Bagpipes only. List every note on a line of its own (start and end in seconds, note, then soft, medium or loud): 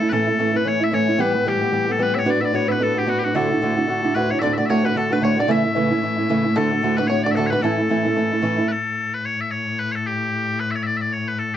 0.09 0.56 A4 medium
0.09 0.12 B4 medium
0.56 0.68 B4 medium
0.68 0.84 C#5 loud
0.84 0.94 E5 loud
0.94 1.20 C#5 loud
1.20 1.48 B4 loud
1.48 1.92 G4 medium
1.92 2.03 A4 medium
2.03 2.14 B4 medium
2.14 2.19 E5 loud
2.19 2.30 C#5 loud
2.30 2.41 D5 medium
2.41 2.45 E5 medium
2.45 2.55 D5 medium
2.55 2.68 C#5 medium
2.68 2.83 B4 medium
2.68 2.72 E5 medium
2.83 2.98 A4 medium
2.98 3.09 G4 medium
3.09 3.19 F#4 medium
3.19 3.24 G4 medium
3.24 3.36 F#4 medium
3.36 4.15 A4 medium
4.15 4.31 B4 medium
4.31 4.39 C#5 medium
4.39 4.53 D5 medium
4.39 4.42 E5 medium
4.53 4.58 E5 medium
4.58 4.66 D5 medium
4.66 4.70 E5 medium
4.70 4.85 C#5 medium
4.85 4.97 B4 medium
4.97 5.13 A4 medium
5.13 5.23 B4 medium
5.23 5.39 C#5 medium
5.39 5.51 D5 loud
5.51 6.57 E5 loud
6.57 6.97 A4 medium
6.97 7.07 B4 medium
7.07 7.23 C#5 loud
7.23 7.31 D5 loud
7.31 7.35 E5 medium
7.35 7.46 A4 medium
7.46 7.62 B4 loud
7.46 7.50 C#5 loud
7.62 8.68 A4 medium
8.68 9.14 A4 medium
8.68 8.72 B4 medium
9.14 9.25 B4 medium
9.25 9.41 C#5 medium
9.41 9.51 E5 medium
9.51 9.79 C#5 medium
9.79 9.92 B4 medium
9.92 10.07 A4 medium
9.92 9.95 C#5 medium
10.07 10.60 G4 medium
10.60 10.71 B4 medium
10.71 10.75 E5 medium
10.75 10.83 C#5 medium
10.83 10.97 D5 medium
10.83 10.87 E5 medium
10.97 11.01 E5 medium
11.01 11.13 D5 medium
11.13 11.28 C#5 medium
11.28 11.39 B4 medium
11.39 11.54 A4 medium